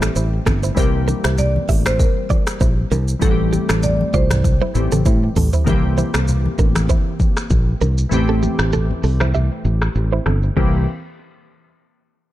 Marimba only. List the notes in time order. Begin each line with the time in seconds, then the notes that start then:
Already playing: E5
0.77 A#4
1.38 D5
1.86 C5
2.00 A#4
3.22 A4
3.83 D5
4.14 C5